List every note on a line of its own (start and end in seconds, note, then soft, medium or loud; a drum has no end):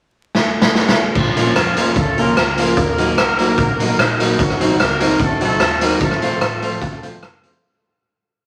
0.35 snare medium
0.62 snare medium
0.75 1.13 C#3 medium
0.75 1.13 A#3 medium
0.75 1.13 C#4 medium
0.75 snare medium
0.88 snare medium
1.15 1.50 A#1 loud
1.15 1.37 F3 medium
1.15 1.37 C#4 medium
1.15 1.37 F4 loud
1.15 kick loud
1.15 crash medium
1.36 1.52 F3 medium
1.36 1.93 F3 medium
1.36 1.51 A#3 medium
1.36 1.52 A#3 medium
1.36 1.51 C#4 medium
1.36 1.52 C#4 medium
1.36 1.93 C#4 medium
1.36 1.51 F4 medium
1.36 1.53 F4 medium
1.36 1.93 F4 loud
1.36 1.51 A#4 loud
1.36 closed hi-hat medium
1.56 1.90 F2 medium
1.56 cross-stick loud
1.56 closed hi-hat medium
1.76 1.92 F3 medium
1.76 1.91 A#3 medium
1.76 1.93 A#3 medium
1.76 1.91 C#4 medium
1.76 1.93 C#4 medium
1.76 1.92 F4 medium
1.76 1.93 F4 medium
1.76 1.92 A#4 medium
1.76 closed hi-hat medium
1.96 2.31 C#2 medium
1.96 2.18 A3 medium
1.96 2.18 F4 medium
1.96 2.18 A4 loud
1.96 kick loud
1.96 closed hi-hat medium
2.17 2.33 F3 medium
2.17 2.32 A#3 medium
2.17 2.33 A#3 medium
2.17 2.77 A#3 loud
2.17 2.32 C#4 medium
2.17 2.33 C#4 medium
2.17 2.32 F4 medium
2.17 2.34 F4 medium
2.17 2.78 F#4 medium
2.17 2.32 A#4 loud
2.17 2.77 A#4 loud
2.17 closed hi-hat medium
2.37 2.72 C#2 medium
2.37 cross-stick loud
2.37 closed hi-hat medium
2.57 2.73 F3 medium
2.57 2.72 A#3 medium
2.57 2.73 A#3 medium
2.57 2.72 C#4 medium
2.57 2.74 C#4 medium
2.57 2.72 F4 medium
2.57 2.74 F4 medium
2.57 2.73 A#4 loud
2.57 closed hi-hat loud
2.77 3.12 D#2 loud
2.77 3.95 A#3 loud
2.77 3.96 F#4 medium
2.77 3.95 A#4 loud
2.77 kick loud
2.77 closed hi-hat medium
2.98 3.14 F#3 medium
2.98 3.13 A#3 medium
2.98 3.14 A#3 medium
2.98 3.13 D#4 medium
2.98 3.14 D#4 medium
2.98 3.13 F#4 medium
2.98 3.15 F#4 medium
2.98 3.13 A#4 loud
2.98 closed hi-hat medium
3.18 3.52 C2 loud
3.18 cross-stick loud
3.18 closed hi-hat medium
3.38 3.54 F#3 medium
3.38 3.53 A#3 medium
3.38 3.55 A#3 medium
3.38 3.53 D#4 medium
3.38 3.55 D#4 medium
3.38 3.54 F#4 medium
3.38 3.55 F#4 medium
3.38 3.54 A#4 loud
3.38 closed hi-hat medium
3.58 3.93 A#1 medium
3.58 kick loud
3.58 closed hi-hat medium
3.78 3.95 F#3 medium
3.78 3.93 A#3 medium
3.78 3.95 A#3 medium
3.78 3.94 D#4 medium
3.78 3.96 D#4 medium
3.78 3.94 F#4 medium
3.78 3.96 F#4 medium
3.78 3.94 A#4 loud
3.78 closed hi-hat medium
3.98 4.33 A#1 medium
3.98 4.40 D#3 medium
3.98 4.40 A#3 medium
3.98 4.40 D#4 medium
3.98 cross-stick loud
3.98 closed hi-hat medium
4.19 4.35 F#3 medium
4.19 4.34 A#3 medium
4.19 4.36 A#3 medium
4.19 4.34 D#4 medium
4.19 4.36 D#4 medium
4.19 4.34 F#4 medium
4.19 4.36 F#4 medium
4.19 4.35 A#4 loud
4.19 closed hi-hat loud
4.39 4.74 C2 loud
4.39 4.80 F#3 medium
4.39 4.80 D#4 medium
4.39 4.80 F#4 loud
4.39 kick loud
4.39 closed hi-hat medium
4.50 cross-stick medium
4.59 4.75 F#3 medium
4.59 4.74 C4 medium
4.59 4.76 C4 medium
4.59 4.74 D#4 medium
4.59 4.76 D#4 loud
4.59 4.75 F#4 medium
4.59 4.76 F#4 medium
4.59 4.75 C5 loud
4.59 closed hi-hat medium
4.80 5.14 C#2 medium
4.80 5.18 A#3 medium
4.80 5.18 F#4 medium
4.80 5.18 A#4 loud
4.80 cross-stick loud
4.80 closed hi-hat medium
5.00 5.16 F#3 medium
5.00 5.15 C4 medium
5.00 5.16 C4 medium
5.00 5.15 D#4 medium
5.00 5.17 D#4 loud
5.00 5.15 F#4 medium
5.00 5.17 F#4 medium
5.00 5.15 C5 loud
5.00 closed hi-hat medium
5.20 5.61 C2 medium
5.20 5.42 A3 medium
5.20 5.42 F#4 medium
5.20 5.42 A4 medium
5.20 kick loud
5.20 closed hi-hat medium
5.40 5.56 F#3 medium
5.40 5.80 A3 medium
5.40 5.55 C4 medium
5.40 5.57 C4 medium
5.40 5.56 D#4 medium
5.40 5.57 D#4 medium
5.40 5.80 F4 medium
5.40 5.56 F#4 medium
5.40 5.57 F#4 loud
5.40 5.80 A4 loud
5.40 5.56 C5 medium
5.40 closed hi-hat medium
5.60 5.95 D#2 loud
5.60 cross-stick loud
5.60 closed hi-hat medium
5.81 5.97 F#3 medium
5.81 6.02 A#3 medium
5.81 5.96 C4 loud
5.81 5.97 C4 medium
5.81 5.96 D#4 medium
5.81 5.98 D#4 medium
5.81 5.96 F#4 medium
5.81 5.98 F#4 medium
5.81 6.02 F#4 medium
5.81 6.02 A#4 loud
5.81 5.96 C5 loud
5.81 closed hi-hat loud
6.01 6.35 F1 loud
6.01 7.23 A3 medium
6.01 7.23 F4 medium
6.01 7.23 A4 loud
6.01 kick loud
6.01 closed hi-hat medium
6.11 cross-stick medium
6.21 6.37 F3 medium
6.21 6.38 A3 medium
6.21 6.36 C4 medium
6.21 6.38 C4 medium
6.21 6.36 F4 medium
6.21 6.38 F4 medium
6.21 6.36 A4 medium
6.21 6.37 C5 loud
6.21 closed hi-hat medium
6.41 6.82 A1 medium
6.41 cross-stick loud
6.41 closed hi-hat medium
6.62 6.77 F3 medium
6.62 6.78 A3 medium
6.62 6.76 C4 medium
6.62 6.78 C4 medium
6.62 6.77 F4 medium
6.62 6.78 F4 medium
6.62 6.77 A4 medium
6.62 6.77 C5 loud
6.62 closed hi-hat medium
6.82 7.16 C2 medium
6.82 kick loud
6.82 closed hi-hat medium
7.02 7.18 F3 medium
7.02 7.18 A3 medium
7.02 7.17 C4 medium
7.02 7.19 C4 medium
7.02 7.17 F4 medium
7.02 7.19 F4 medium
7.02 7.17 A4 medium
7.02 7.17 C5 loud
7.02 closed hi-hat medium
7.22 7.57 F#1 medium
7.22 cross-stick loud
7.22 closed hi-hat medium
7.43 7.58 F3 medium
7.43 7.59 A3 medium
7.43 7.57 C4 medium
7.43 7.59 C4 medium
7.43 7.58 F4 medium
7.43 7.59 F4 medium
7.43 7.58 A4 medium
7.43 7.58 C5 loud
7.43 closed hi-hat loud